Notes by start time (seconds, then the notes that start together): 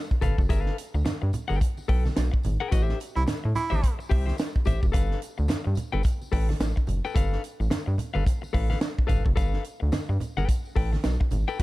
0.11 kick, muted conga
0.21 G1 A4 B4 F5, kick, closed hi-hat, tambourine, low conga
0.38 F#1, muted clean electric guitar stroke, kick, tambourine
0.49 G1 G#4 A#4 E5, kick, closed hi-hat, tambourine
0.60 A4 B4 F5
0.66 snare, muted conga
0.78 closed hi-hat, tambourine
0.94 D2, muted clean electric guitar stroke, tambourine
1.05 G2, muted clean electric guitar stroke, snare, closed hi-hat, tambourine, muted conga, high conga
1.22 G2, muted clean electric guitar stroke
1.33 closed hi-hat, tambourine, low conga
1.48 G1 A4 B4 G5, tambourine, high conga
1.60 muted clean electric guitar stroke, kick, closed hi-hat, tambourine, muted conga
1.77 tambourine, muted conga
1.88 B1 A4 B4 G5, kick, open hi-hat
2.05 muted clean electric guitar stroke, snare, tambourine, high conga
2.16 B1, muted clean electric guitar stroke, snare, closed hi-hat, tambourine
2.31 muted clean electric guitar stroke, kick
2.43 G#1, closed hi-hat, tambourine, low conga
2.60 A4 B4 G5
2.71 A1 F#4 B4 D#5, kick, closed hi-hat, tambourine, muted conga
2.82 G4 C5 E5
2.89 snare, muted conga
3.00 closed hi-hat, tambourine
3.16 C2 E4, muted clean electric guitar stroke, tambourine
3.27 A2, muted clean electric guitar stroke, snare, closed hi-hat, tambourine, muted conga, high conga
3.44 A2, muted clean electric guitar stroke, muted conga
3.55 E4, closed hi-hat, tambourine, low conga
3.70 A1 G4 C5 E5, tambourine, high conga
3.82 muted clean electric guitar stroke, kick, closed hi-hat, tambourine
3.99 muted clean electric guitar stroke, tambourine
4.09 C2 G4 C5 E5, kick, open hi-hat
4.26 G4 C5 E5, snare, high conga
4.37 muted clean electric guitar stroke, snare, closed hi-hat, tambourine
4.56 kick
4.65 A1 G4 C5 E5, kick, closed hi-hat, tambourine, low conga
4.82 F#1, muted clean electric guitar stroke, kick, tambourine
4.92 G1 A4 B4 F5, kick, closed hi-hat, tambourine, muted conga
5.11 snare
5.22 closed hi-hat, tambourine
5.38 D2, muted clean electric guitar stroke, tambourine
5.48 G2, muted clean electric guitar stroke, snare, closed hi-hat, tambourine, muted conga, high conga
5.64 G2, muted clean electric guitar stroke, muted conga
5.75 closed hi-hat, tambourine, low conga
5.92 G1 A4 B4 G5, high conga
6.03 muted clean electric guitar stroke, kick, closed hi-hat, tambourine, muted conga
6.21 tambourine, muted conga
6.32 A1 A4 B4 G5, kick, open hi-hat
6.49 muted clean electric guitar stroke, snare, high conga
6.60 A1, muted clean electric guitar stroke, snare, closed hi-hat, tambourine
6.76 muted clean electric guitar stroke, kick, muted conga
6.87 F#1, closed hi-hat, tambourine, low conga
7.05 A4 B4 G5, tambourine
7.15 G1 A4 B4 F5, kick, closed hi-hat, tambourine
7.33 snare
7.44 closed hi-hat, tambourine
7.60 A1, muted clean electric guitar stroke, tambourine
7.70 G2, muted clean electric guitar stroke, snare, closed hi-hat, tambourine, high conga
7.86 G2, muted clean electric guitar stroke, muted conga
7.98 closed hi-hat, tambourine, low conga
8.14 G1 A4 B4 F5, tambourine, high conga
8.25 muted clean electric guitar stroke, kick, closed hi-hat, tambourine
8.42 muted clean electric guitar stroke, tambourine, muted conga
8.53 A1 A4 B4 F5, kick, open hi-hat
8.70 A4 B4 F5, snare, tambourine, high conga
8.80 muted clean electric guitar stroke, snare, closed hi-hat, tambourine
8.99 kick
9.07 G1 A4 B4 F5, kick, closed hi-hat, tambourine, low conga
9.25 F#1, muted clean electric guitar stroke, kick
9.36 G1 A4 B4 F5, kick, closed hi-hat, tambourine
9.54 snare, muted conga
9.64 closed hi-hat, tambourine
9.80 D2, muted clean electric guitar stroke
9.92 G2, muted clean electric guitar stroke, snare, closed hi-hat, tambourine, muted conga, high conga
10.09 G2, muted clean electric guitar stroke
10.20 closed hi-hat, tambourine, low conga
10.37 G1 A4 B4 G5, tambourine, high conga
10.48 muted clean electric guitar stroke, kick, closed hi-hat, tambourine, muted conga
10.65 tambourine
10.76 A1 A4 B4 G5, kick, open hi-hat
10.92 muted clean electric guitar stroke, snare, tambourine, high conga
11.04 B1, muted clean electric guitar stroke, snare, closed hi-hat, tambourine
11.20 muted clean electric guitar stroke, kick, muted conga
11.31 G#1, closed hi-hat, tambourine, low conga
11.48 A4 B4 G5, tambourine
11.59 closed hi-hat